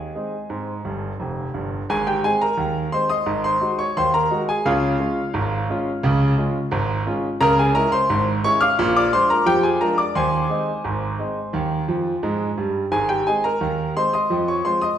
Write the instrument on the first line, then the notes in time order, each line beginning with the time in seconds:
grand piano
Already playing: G#4 D#5 G#5
0.15 G#3 C4 D#4
0.50 G#2 C4
0.85 G1 G2
1.20 F1 F2
1.54 G1 G2
1.90 G#1 G#2 G#4 G#5
2.07 G4 G5
2.24 G#3 C4 D#4 G#4 G#5
2.41 A#4 A#5
2.57 D#2 D#3
2.92 G#3 C4 D#4 C5 C6
3.09 D#5 C6 D#6
3.26 G#1 G#2
3.44 C5 C6
3.61 G#3 D#4 F#4
3.79 C#5 C#6
3.97 D#2 D#3 C5 C6
4.14 A#4 A#5
4.30 G#3 D#4 F#4
4.49 G#4 G#5
4.66 C#2 C#3 F4 C#5 F5
5.00 G#3 C#4 F4
5.34 G#1 G#2
5.70 G#3 C#4 F4
6.03 C#2 C#3
6.38 G#3 C#4 F4
6.71 G#1 G#2
7.07 G#3 C#4 F4
7.41 C#2 C#3 A#4 A#5
7.59 G#4 G#5
7.75 G#3 C#4 E4 A#4 A#5
7.92 C5 C6
8.10 G#1 G#2
8.44 G#3 C#4 E4 C#5 C#6
8.61 F5 D6 F6
8.79 A#1 A#2
8.96 D5 D6
9.13 G#3 D4 F4 C5 C6
9.30 A#4 A#5
9.46 F2 F3 G4 G5
9.63 G#4 G#5
9.81 G#3 D4 F4 A#4 A#5
9.98 D5 D6
10.15 D#2 D#3 C5 G#5 C6
10.50 G#3 C4 D#4
10.84 G#1 G#2
11.19 G#3 C4 D#4
11.53 D#2 D#3
11.88 F2 F3
12.23 G#2 G#3
12.58 G2 G3
12.91 G#1 G#2 G#4 G#5
13.09 G4 G5
13.27 G#3 C4 D#4 G#4 G#5
13.44 A#4 A#5
13.61 D#2 D#3
13.96 G#3 C4 D#4 C5 C6
14.13 D#5 C6 D#6
14.30 F2 F3
14.48 C#5 C#6
14.65 G#3 C4 F4 C5 C6
14.81 D#5 D#6